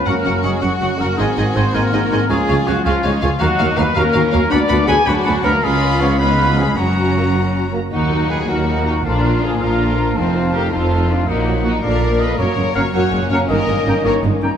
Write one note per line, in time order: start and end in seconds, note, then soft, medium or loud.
0.00 1.14 C#4 medium
0.05 0.15 F#1 soft
0.05 0.14 F#2 medium
0.05 1.18 F#3 soft
0.05 0.43 A#3 medium
0.05 0.14 C#4 soft
0.05 0.15 C#4 soft
0.05 0.13 F#4 soft
0.05 2.26 F#4 medium
0.05 0.44 A#4 medium
0.05 0.13 F#5 soft
0.05 0.17 F#5 soft
0.05 0.14 C#6 soft
0.24 0.34 F#1 medium
0.24 0.33 F#2 soft
0.24 0.32 C#4 soft
0.24 0.33 C#4 soft
0.24 0.32 F#4 soft
0.24 0.33 F#5 soft
0.24 0.35 F#5 soft
0.24 0.32 C#6 soft
0.43 0.52 F#1 soft
0.43 0.52 F#2 soft
0.43 0.62 G#3 medium
0.43 0.52 C#4 soft
0.43 0.51 F#4 soft
0.43 0.62 G#4 medium
0.43 0.50 F#5 soft
0.43 0.53 F#5 soft
0.43 0.50 C#6 soft
0.61 0.70 F#1 soft
0.61 0.70 F#2 soft
0.61 0.99 F#3 medium
0.61 0.71 C#4 soft
0.61 0.70 C#4 soft
0.61 0.99 F#4 medium
0.61 0.70 F#4 soft
0.61 0.69 F#5 soft
0.61 0.72 F#5 soft
0.61 0.70 C#6 soft
0.80 0.89 F#1 medium
0.80 0.88 F#2 soft
0.80 0.89 C#4 soft
0.80 0.88 C#4 soft
0.80 0.88 F#4 soft
0.80 0.89 F#5 soft
0.80 0.91 F#5 soft
0.80 0.88 C#6 soft
0.98 1.07 F#1 soft
0.98 1.07 F#2 soft
0.98 1.17 A#3 medium
0.98 1.07 C#4 soft
0.98 1.07 F#4 soft
0.98 1.18 A#4 medium
0.98 1.09 F#5 soft
0.98 1.08 F#5 soft
0.98 1.06 C#6 soft
1.16 1.26 G#1 medium
1.16 1.26 G#2 medium
1.16 2.27 D#3 medium
1.16 1.54 G#3 medium
1.16 1.25 C4 soft
1.16 2.28 C4 medium
1.16 1.26 D#4 medium
1.16 1.55 G#4 medium
1.16 1.25 G#4 soft
1.16 1.26 D#5 medium
1.16 1.28 G#5 soft
1.16 1.24 C6 medium
1.36 1.45 G#1 medium
1.36 1.45 G#2 medium
1.36 1.44 C4 soft
1.36 1.45 D#4 soft
1.36 1.44 G#4 soft
1.36 1.45 D#5 soft
1.36 1.46 G#5 medium
1.36 1.43 C6 soft
1.53 1.63 G#1 soft
1.53 1.63 G#2 soft
1.53 1.62 C4 medium
1.53 1.62 C4 soft
1.53 1.63 D#4 medium
1.53 1.63 G#4 medium
1.53 1.74 C5 medium
1.53 1.64 D#5 soft
1.53 1.65 G#5 soft
1.53 1.62 C6 medium
1.71 1.82 G#1 medium
1.71 1.82 G#2 medium
1.71 2.27 A#3 medium
1.71 1.81 C4 medium
1.71 1.82 D#4 medium
1.71 1.81 G#4 medium
1.71 2.30 A#4 medium
1.71 1.82 D#5 medium
1.71 1.83 G#5 medium
1.71 1.81 C6 medium
1.92 2.01 G#1 medium
1.92 2.00 G#2 soft
1.92 2.00 C4 soft
1.92 2.01 D#4 soft
1.92 2.00 G#4 soft
1.92 2.01 D#5 soft
1.92 2.02 G#5 soft
1.92 1.99 C6 soft
2.11 2.19 G#1 medium
2.11 2.19 G#2 soft
2.11 2.19 C4 medium
2.11 2.20 D#4 medium
2.11 2.19 G#4 medium
2.11 2.20 D#5 soft
2.11 2.20 G#5 medium
2.11 2.17 C6 medium
2.28 2.37 C#2 medium
2.28 2.38 C#2 medium
2.28 3.41 F3 medium
2.28 2.66 G#3 medium
2.28 3.41 C#4 medium
2.28 2.37 C#4 medium
2.28 2.37 F4 medium
2.28 2.85 F4 medium
2.28 2.66 G#4 medium
2.28 2.38 G#4 medium
2.28 2.38 F5 medium
2.28 2.38 G#5 medium
2.28 2.36 C#6 medium
2.48 2.56 C#2 medium
2.48 2.56 C#4 medium
2.48 2.57 F4 medium
2.48 2.56 G#4 medium
2.48 2.56 F5 medium
2.48 2.56 G#5 medium
2.48 2.54 C#6 soft
2.65 2.75 C#2 medium
2.65 2.84 F#3 medium
2.65 2.75 C#4 medium
2.65 2.76 F4 medium
2.65 2.85 F#4 medium
2.65 2.75 G#4 medium
2.65 2.74 F5 soft
2.65 2.75 G#5 medium
2.65 2.72 C#6 medium
2.85 2.93 C#2 medium
2.85 3.03 F3 medium
2.85 3.04 C#4 medium
2.85 2.93 C#4 medium
2.85 3.03 F4 medium
2.85 2.94 F4 medium
2.85 2.93 G#4 medium
2.85 2.93 F5 medium
2.85 2.94 G#5 medium
2.85 2.91 C#6 medium
3.03 3.12 C#2 medium
3.03 3.12 C#4 medium
3.03 3.22 D#4 medium
3.03 3.12 F4 soft
3.03 3.13 G#4 medium
3.03 3.11 F5 medium
3.03 3.12 G#5 medium
3.03 3.10 C#6 medium
3.21 3.30 C#2 medium
3.21 3.30 C#4 medium
3.21 3.40 F4 medium
3.21 3.31 F4 medium
3.21 3.31 G#4 medium
3.21 3.29 F5 medium
3.21 3.32 G#5 medium
3.21 3.28 C#6 medium
3.39 3.48 D#2 medium
3.39 3.49 D#2 medium
3.39 3.74 F#3 medium
3.39 3.49 A#3 medium
3.39 3.95 D#4 medium
3.39 3.75 F#4 medium
3.39 3.49 F#4 medium
3.39 3.47 F5 medium
3.39 3.49 F5 medium
3.39 3.46 A#5 medium
3.59 3.67 D#2 medium
3.59 3.67 A#3 medium
3.59 3.68 F#4 medium
3.59 3.67 F#4 medium
3.59 3.66 F5 medium
3.59 3.67 F5 medium
3.59 3.65 A#5 medium
3.77 3.85 D#2 medium
3.77 3.84 F#3 medium
3.77 3.84 A#3 medium
3.77 3.86 A#3 medium
3.77 3.85 B3 medium
3.77 3.87 F#4 medium
3.77 3.86 F#4 medium
3.77 3.96 B4 medium
3.77 3.84 F5 medium
3.77 3.85 F5 medium
3.77 3.83 A#5 medium
3.94 4.04 D#2 medium
3.94 4.49 A#3 medium
3.94 4.04 A#3 medium
3.94 4.51 C#4 medium
3.94 4.04 F#4 medium
3.94 4.05 F#4 medium
3.94 4.52 A#4 medium
3.94 4.03 F5 medium
3.94 4.01 A#5 medium
4.14 4.22 D#2 medium
4.14 4.22 A#3 medium
4.14 4.23 F#4 medium
4.14 4.22 F#4 medium
4.14 4.21 F5 medium
4.14 4.22 F5 medium
4.14 4.21 A#5 medium
4.32 4.41 D#2 medium
4.32 4.39 F#3 medium
4.32 4.39 A#3 medium
4.32 4.40 A#3 medium
4.32 4.41 F#4 medium
4.32 4.40 F#4 medium
4.32 4.40 F5 medium
4.32 4.41 F5 medium
4.32 4.39 A#5 medium
4.49 4.59 D2 medium
4.49 4.60 D2 medium
4.49 5.07 B3 medium
4.49 4.59 B3 medium
4.49 4.86 D4 medium
4.49 4.59 D4 medium
4.49 4.59 F#4 medium
4.49 4.88 D5 loud
4.49 4.59 F#5 medium
4.49 4.57 B5 medium
4.49 4.59 B5 medium
4.68 4.77 D2 medium
4.68 4.77 B3 medium
4.68 4.78 D4 medium
4.68 4.77 F#4 medium
4.68 4.77 F#5 medium
4.68 4.76 B5 medium
4.85 4.96 D2 medium
4.85 4.94 F#3 medium
4.85 4.93 B3 medium
4.85 4.96 B3 medium
4.85 4.97 D4 medium
4.85 4.96 F#4 medium
4.85 5.06 G#4 medium
4.85 4.96 F#5 medium
4.85 5.06 G#5 loud
4.85 4.95 B5 medium
4.85 4.94 B5 medium
5.06 5.14 D2 medium
5.06 5.44 F#3 medium
5.06 5.14 B3 medium
5.06 5.61 D4 medium
5.06 5.15 D4 medium
5.06 5.44 F#4 medium
5.06 5.14 F#4 medium
5.06 5.15 F#5 medium
5.06 5.12 B5 medium
5.06 5.14 B5 medium
5.24 5.33 D2 medium
5.24 5.33 B3 medium
5.24 5.35 D4 medium
5.24 5.33 F#4 medium
5.24 5.33 F#5 medium
5.24 5.33 B5 medium
5.24 5.32 B5 medium
5.42 5.51 D2 medium
5.42 5.52 D2 medium
5.42 5.51 F#3 medium
5.42 5.63 A#3 medium
5.42 5.51 B3 medium
5.42 5.52 D4 medium
5.42 5.51 F#4 medium
5.42 5.63 A#4 loud
5.42 5.51 F#5 medium
5.42 5.52 B5 medium
5.42 5.50 B5 medium
5.62 6.73 C#2 medium
5.62 6.00 G#3 medium
5.62 6.16 C#4 medium
5.62 6.18 F4 medium
5.62 6.16 F4 medium
5.62 6.00 G#4 medium
5.62 6.15 F5 medium
5.62 5.95 B5 medium
5.62 6.16 B5 medium
6.00 6.06 F3 medium
6.00 6.07 B3 medium
6.00 6.19 C#4 medium
6.00 6.19 C#5 medium
6.19 6.57 B3 medium
6.19 6.76 C#4 medium
6.19 6.77 C#4 medium
6.19 6.76 D#4 medium
6.19 6.76 F4 medium
6.19 6.57 B4 medium
6.19 6.79 F5 medium
6.19 6.76 B5 medium
6.56 6.64 F3 medium
6.56 6.77 G#3 medium
6.56 6.64 B3 medium
6.56 6.77 G#4 medium
6.76 7.73 F#1 medium
6.76 7.73 F#2 medium
6.76 7.71 F#3 medium
6.76 7.62 C#4 medium
6.76 7.72 C#4 soft
6.76 7.72 C#4 medium
6.76 7.73 F#4 medium
6.76 7.72 F#4 medium
6.76 7.73 F#5 medium
6.76 7.73 A#5 medium
6.76 7.74 A#5 medium
7.16 7.23 F#3 soft
7.16 7.23 A#3 medium
7.73 7.79 F#3 soft
7.73 7.80 A#3 soft
7.91 8.42 D#2 soft
7.91 8.42 D#2 medium
7.91 10.12 A#2 soft
7.91 8.09 D#3 soft
7.91 9.01 F#3 soft
7.91 8.10 A#3 soft
7.91 10.12 A#3 soft
7.91 8.44 D#4 soft
7.91 8.10 D#4 soft
7.91 8.27 D#4 medium
7.91 9.01 D#4 soft
7.91 8.27 F#4 medium
7.91 8.45 F#5 soft
7.91 8.45 A#5 soft
8.11 8.30 F#3 soft
8.11 8.30 A#3 soft
8.11 8.30 F#4 soft
8.30 8.49 D#3 soft
8.30 8.49 A#3 soft
8.30 8.49 D#4 soft
8.30 8.49 G#4 medium
8.30 8.38 B4 medium
8.48 8.98 D#2 medium
8.48 8.98 D#2 soft
8.48 8.67 F#3 soft
8.48 8.68 A#3 soft
8.48 9.04 D#4 soft
8.48 8.86 F#4 soft
8.48 8.68 F#4 soft
8.48 8.86 A#4 medium
8.48 9.07 F#5 soft
8.48 9.04 A#5 soft
8.67 8.85 D#3 soft
8.67 8.85 A#3 soft
8.67 8.85 D#4 soft
8.86 9.05 F#3 soft
8.86 9.05 A#3 soft
8.86 8.93 D#4 soft
8.86 9.05 F#4 medium
8.86 9.05 F#4 soft
9.04 9.54 A#1 soft
9.04 9.54 A#2 medium
9.04 9.22 D3 soft
9.04 11.28 F3 soft
9.04 9.22 A#3 soft
9.04 9.41 D4 medium
9.04 9.22 D4 soft
9.04 9.59 D4 soft
9.04 10.17 D4 soft
9.04 9.42 F4 medium
9.04 9.60 F5 soft
9.04 9.60 A#5 soft
9.22 9.42 F3 soft
9.22 9.42 A#3 soft
9.22 9.42 D4 soft
9.22 9.42 F4 soft
9.41 9.60 D3 soft
9.41 9.60 A#3 soft
9.41 9.61 D4 soft
9.41 9.59 F4 medium
9.41 9.61 G#4 medium
9.59 10.10 A#1 soft
9.59 10.10 A#2 medium
9.59 9.79 F3 soft
9.59 9.79 A#3 soft
9.59 9.79 D4 soft
9.59 10.16 D4 soft
9.59 9.79 F4 soft
9.59 10.15 F4 medium
9.59 10.17 A#4 medium
9.59 10.15 F5 soft
9.59 10.16 A#5 soft
9.79 9.96 D3 soft
9.79 9.96 A#3 soft
9.79 9.96 D4 soft
9.97 10.16 F3 soft
9.97 10.16 A#3 soft
9.97 10.16 D4 soft
9.97 10.14 F4 soft
10.15 10.66 F1 soft
10.15 10.66 F2 medium
10.15 11.27 C3 soft
10.15 10.33 D#3 soft
10.15 10.33 A3 soft
10.15 11.28 A3 soft
10.15 10.53 C4 medium
10.15 10.33 D#4 soft
10.15 11.83 D#4 soft
10.15 10.71 D#4 soft
10.15 10.33 F4 soft
10.15 10.54 F4 medium
10.15 10.72 F5 soft
10.15 10.71 A5 soft
10.34 10.53 F3 soft
10.34 10.53 C4 soft
10.34 10.53 F4 soft
10.53 10.72 D#3 soft
10.53 10.72 A3 soft
10.53 10.72 D#4 soft
10.53 10.70 F4 soft
10.53 10.72 G4 medium
10.53 10.62 A#4 medium
10.71 11.22 F1 soft
10.71 11.21 F2 soft
10.71 10.90 F3 soft
10.71 10.90 C4 soft
10.71 10.91 C4 soft
10.71 11.27 D#4 soft
10.71 10.89 F4 soft
10.71 11.09 F4 soft
10.71 11.09 A4 medium
10.71 11.27 F5 soft
10.71 11.26 A5 soft
10.89 11.07 D#3 soft
10.89 11.07 A3 soft
10.89 11.08 D#4 soft
10.89 11.07 F4 soft
11.08 11.27 F3 soft
11.08 11.27 C4 soft
11.08 11.28 D4 soft
11.08 11.27 F4 soft
11.08 11.27 F4 medium
11.27 11.77 A#1 soft
11.27 12.36 A#2 soft
11.27 11.76 A#2 medium
11.27 11.45 D#3 soft
11.27 11.83 F#3 soft
11.27 12.37 A#3 soft
11.27 11.45 A#3 soft
11.27 11.64 A#3 medium
11.27 11.64 D#4 medium
11.27 11.86 D#4 soft
11.27 11.45 D#4 soft
11.27 11.85 F#5 soft
11.27 11.82 A#5 soft
11.46 11.65 F#3 soft
11.46 11.65 A#3 soft
11.46 11.65 F#4 soft
11.63 11.84 D#3 soft
11.63 11.82 A#3 soft
11.63 11.83 D#4 soft
11.63 11.83 D#4 medium
11.63 11.72 F#4 medium
11.81 12.32 A#1 soft
11.81 12.32 A#2 medium
11.81 12.01 D3 soft
11.81 12.39 F3 soft
11.81 11.99 A#3 soft
11.81 12.00 A#3 soft
11.81 11.99 D4 soft
11.81 12.36 F4 soft
11.81 12.39 F4 soft
11.81 12.19 A#4 medium
11.81 12.19 D5 medium
11.81 12.39 F5 soft
11.81 12.38 A#5 soft
12.00 12.20 F3 soft
12.00 12.17 A#3 soft
12.00 12.17 D4 soft
12.00 12.20 D4 soft
12.18 12.39 D3 soft
12.18 12.35 A#3 soft
12.18 12.38 A#3 soft
12.18 12.37 D4 soft
12.18 12.39 B4 medium
12.18 12.38 D#5 medium
12.36 12.46 F#1 medium
12.36 12.46 F#2 medium
12.36 14.43 A#2 medium
12.36 13.46 F#3 soft
12.36 12.56 F#3 medium
12.36 14.56 A#3 medium
12.36 14.57 A#3 soft
12.36 12.56 A#3 soft
12.36 14.57 C#4 medium
12.36 14.57 C#4 soft
12.36 12.75 A#4 medium
12.36 12.75 C#5 medium
12.56 12.64 F#1 soft
12.56 12.64 F#2 soft
12.56 12.65 F#3 soft
12.56 12.65 G#3 soft
12.75 12.83 F#1 soft
12.75 12.82 F#2 soft
12.75 12.84 F#3 soft
12.75 12.83 A#3 soft
12.75 12.83 C#4 soft
12.75 12.93 C#5 medium
12.75 12.83 F5 medium
12.75 12.82 F#5 soft
12.75 12.84 A#5 medium
12.93 13.02 F#1 medium
12.93 13.01 F#2 medium
12.93 13.11 F#3 medium
12.93 13.11 A#3 medium
12.93 13.30 C#5 medium
12.93 13.31 F#5 medium
13.12 13.20 F#1 soft
13.12 13.20 F#2 soft
13.12 13.20 F#3 soft
13.12 13.20 G#3 soft
13.31 13.39 F#1 soft
13.31 13.38 F#2 soft
13.31 13.38 F#3 medium
13.31 13.39 A#3 soft
13.31 13.38 C#4 medium
13.31 13.38 C#5 medium
13.31 13.40 F5 medium
13.31 13.38 F#5 medium
13.31 13.41 A#5 medium
13.48 13.57 G1 medium
13.48 13.57 G2 medium
13.48 14.43 D#3 soft
13.48 13.66 D#3 medium
13.48 13.67 A#3 medium
13.48 14.04 A#4 medium
13.48 14.04 D#5 medium
13.67 13.76 G1 soft
13.67 13.76 G2 soft
13.67 13.75 D#3 soft
13.67 13.75 G#3 soft
13.85 13.94 G1 soft
13.85 13.94 G2 soft
13.85 13.93 D#3 medium
13.85 13.93 A#3 soft
13.85 13.93 C#4 medium
13.85 13.95 G5 medium
13.85 13.96 A#5 medium
14.05 14.13 G1 medium
14.05 14.13 G2 medium
14.05 14.21 D#3 medium
14.05 14.22 A#3 medium
14.05 14.14 A#4 medium
14.05 14.24 C#5 medium
14.22 14.31 G1 soft
14.22 14.32 G2 soft
14.22 14.30 D#3 soft
14.22 14.30 G#3 soft
14.42 14.50 G1 soft
14.42 14.50 G2 soft
14.42 14.50 D#3 medium
14.42 14.50 A#3 medium
14.42 14.49 C#4 medium
14.42 14.49 G5 soft
14.42 14.52 A#5 medium